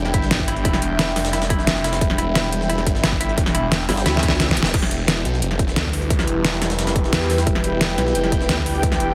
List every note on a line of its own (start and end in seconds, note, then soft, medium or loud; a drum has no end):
0.00 0.12 E1 loud
0.00 4.70 G3 medium
0.00 4.70 D4 medium
0.00 4.72 E5 medium
0.00 4.74 G5 medium
0.05 snare soft
0.05 closed hi-hat soft
0.14 0.64 G1 loud
0.14 0.24 E4 medium
0.14 kick loud
0.14 closed hi-hat medium
0.22 snare medium
0.31 snare loud
0.31 closed hi-hat medium
0.39 kick medium
0.48 0.54 E4 medium
0.48 closed hi-hat medium
0.56 closed hi-hat soft
0.65 1.15 E1 loud
0.65 0.75 E4 loud
0.65 kick loud
0.65 closed hi-hat medium
0.74 snare medium
0.82 closed hi-hat medium
0.99 1.09 E4 medium
0.99 snare loud
0.99 closed hi-hat medium
1.08 snare soft
1.16 2.00 F1 loud
1.16 snare loud
1.16 snare medium
1.16 closed hi-hat medium
1.16 open hi-hat medium
1.25 snare loud
1.25 closed hi-hat medium
1.33 1.39 E4 medium
1.33 snare loud
1.33 closed hi-hat medium
1.42 snare loud
1.42 snare soft
1.42 closed hi-hat medium
1.50 1.60 E4 loud
1.50 kick loud
1.50 closed hi-hat medium
1.59 snare soft
1.67 snare loud
1.67 closed hi-hat medium
1.76 snare medium
1.84 1.95 E4 medium
1.84 snare loud
1.84 closed hi-hat medium
1.93 snare loud
1.93 closed hi-hat medium
2.01 2.85 E1 loud
2.01 kick loud
2.01 closed hi-hat medium
2.10 snare medium
2.18 2.24 E4 medium
2.18 closed hi-hat loud
2.18 closed hi-hat medium
2.35 2.46 E4 loud
2.35 snare loud
2.35 closed hi-hat medium
2.44 closed hi-hat soft
2.52 closed hi-hat loud
2.52 closed hi-hat medium
2.61 snare soft
2.69 2.80 E4 medium
2.69 closed hi-hat medium
2.78 snare soft
2.78 closed hi-hat soft
2.87 3.36 G1 loud
2.87 kick loud
2.87 closed hi-hat loud
2.87 closed hi-hat medium
2.95 snare medium
3.04 3.10 E4 medium
3.04 snare loud
3.04 closed hi-hat medium
3.12 kick medium
3.21 3.31 E4 loud
3.21 closed hi-hat loud
3.21 closed hi-hat medium
3.29 closed hi-hat soft
3.38 3.87 E1 loud
3.38 kick loud
3.38 closed hi-hat medium
3.46 snare medium
3.55 3.65 E4 medium
3.55 closed hi-hat loud
3.55 closed hi-hat medium
3.72 snare loud
3.72 closed hi-hat medium
3.80 snare soft
3.89 4.05 G1 loud
3.89 3.95 E4 medium
3.89 snare loud
3.89 snare medium
3.89 closed hi-hat medium
3.89 open hi-hat medium
3.97 snare loud
3.97 closed hi-hat medium
4.06 4.56 D2 loud
4.06 4.16 E4 loud
4.06 snare medium
4.06 snare loud
4.06 closed hi-hat medium
4.14 snare medium
4.14 closed hi-hat soft
4.23 4.33 E4 loud
4.23 kick loud
4.23 closed hi-hat medium
4.28 snare medium
4.31 snare soft
4.40 4.46 E5 medium
4.40 snare medium
4.40 snare loud
4.40 closed hi-hat medium
4.48 kick medium
4.48 snare loud
4.48 closed hi-hat soft
4.57 4.73 F1 loud
4.57 closed hi-hat loud
4.57 closed hi-hat medium
4.63 snare loud
4.66 snare loud
4.66 closed hi-hat medium
4.74 5.24 E1 loud
4.74 9.14 G3 medium
4.74 9.14 E4 medium
4.74 9.14 B4 medium
4.74 kick loud
4.74 closed hi-hat medium
4.74 crash loud
4.82 snare medium
4.91 closed hi-hat medium
5.02 9.14 G4 medium
5.08 snare loud
5.08 closed hi-hat medium
5.17 closed hi-hat soft
5.25 5.41 B1 loud
5.25 closed hi-hat medium
5.30 9.14 B4 medium
5.30 snare soft
5.42 5.58 F1 loud
5.42 closed hi-hat loud
5.42 closed hi-hat medium
5.51 snare soft
5.51 closed hi-hat soft
5.59 5.75 F1 loud
5.59 kick loud
5.59 closed hi-hat medium
5.68 snare medium
5.76 6.26 D2 loud
5.76 snare loud
5.76 closed hi-hat medium
5.76 closed hi-hat loud
5.85 kick medium
5.93 closed hi-hat medium
5.93 open hi-hat medium
6.02 closed hi-hat soft
6.10 kick loud
6.10 closed hi-hat medium
6.17 9.14 G5 medium
6.17 snare medium
6.27 6.77 E1 loud
6.27 closed hi-hat medium
6.44 snare loud
6.44 closed hi-hat medium
6.44 closed hi-hat loud
6.53 snare soft
6.62 snare loud
6.62 snare medium
6.62 closed hi-hat medium
6.70 snare loud
6.70 closed hi-hat medium
6.79 6.94 F1 loud
6.79 snare loud
6.79 closed hi-hat medium
6.87 snare loud
6.87 snare soft
6.87 closed hi-hat medium
6.96 7.11 E1 loud
6.96 kick loud
6.96 closed hi-hat medium
7.04 snare soft
7.13 7.45 E2 loud
7.13 snare loud
7.13 closed hi-hat medium
7.21 snare medium
7.30 snare loud
7.30 closed hi-hat medium
7.30 open hi-hat medium
7.38 snare loud
7.38 closed hi-hat medium
7.47 7.97 E1 loud
7.47 kick loud
7.47 closed hi-hat medium
7.55 snare medium
7.64 closed hi-hat medium
7.81 snare loud
7.81 closed hi-hat medium
7.90 closed hi-hat soft
7.98 8.14 B1 loud
7.98 snare medium
7.98 closed hi-hat medium
8.07 snare soft
8.15 8.31 F1 loud
8.15 closed hi-hat medium
8.24 snare soft
8.24 closed hi-hat soft
8.32 8.48 F1 loud
8.32 kick loud
8.32 closed hi-hat medium
8.41 snare medium
8.49 8.99 D2 loud
8.49 snare loud
8.49 closed hi-hat medium
8.58 kick medium
8.66 closed hi-hat medium
8.66 open hi-hat medium
8.75 closed hi-hat soft
8.83 kick loud
8.83 closed hi-hat medium
8.92 snare medium
9.00 9.14 E1 loud
9.00 closed hi-hat medium